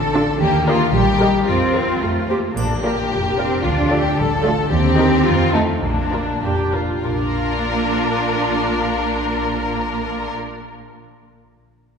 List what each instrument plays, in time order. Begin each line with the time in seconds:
Already playing: double bass section A1, harp D3 F3 A3 D4 F4, violin section A4
0.06 harp A4
0.13 cello section D4, viola section D4 F4, violin section A4
0.24 harp D4
0.39 double bass section D#2, harp D#3, cello section A#3, violin section G4
0.59 harp D#4
0.67 violin section F4 D#5, viola section G4 A#4
0.77 harp G3
0.92 double bass section A#1, cello section G3, violin section G4, harp G4
1.12 harp A#4
1.21 viola section G4 A#4, violin section D#5
1.30 harp G3
1.47 double bass section F2, harp F3, cello section C4, violin section F4
1.66 harp F4
1.74 viola section F4 A#4, violin section C5
1.84 harp F4 A#4
2.01 double bass section F2, harp F3, cello section A3, viola section F4
2.20 harp F4
2.29 cello section A#3, viola section G4, violin section C5
2.37 harp F4 A4
2.56 double bass section A#1, harp A#2, violin section D4, triangle
2.74 harp F3
2.83 viola section F4 A#4, violin section G4 D5
2.92 harp D4
3.10 double bass section F1, harp F4
3.29 harp A#4
3.37 cello section C4, viola section F4 A#4, violin section D5
3.47 harp D4
3.64 double bass section D2, harp D3, cello section D4, violin section F4
3.82 harp A3
3.90 viola section F4 A4, violin section G4 D5
4.00 harp D4
4.17 double bass section A1, cello section G3, harp F4, violin section A4
4.34 harp A4
4.44 cello section A3, viola section F4 A4, violin section D5
4.52 harp D4
4.70 double bass section D#2, harp D#3, cello section C4, violin section G4
4.89 harp D#4
4.98 viola section D#4 G4, violin section A#4
5.07 harp D#4 G4
5.25 double bass section F2, harp F3, violin section F4
5.45 harp D#4
5.53 cello section A3, violin section D#4 A4, viola section D#4 F4
5.64 harp D#4 F4
5.81 double bass section A#1, harp A#2, cello section A#3, violin section D4
6.04 harp F3
6.12 viola section D4 F4, violin section A#4
6.23 harp A#3
6.43 double bass section F1, harp D4, viola section G4
6.63 harp F4
6.73 viola section F4, violin section A#4
6.83 harp A#3
7.04 double bass section A#1, harp A#2, cello section A#3, viola section D4, violin section F4 A#4
7.12 harp A#3
7.18 harp D4
7.26 harp F4
7.33 harp D5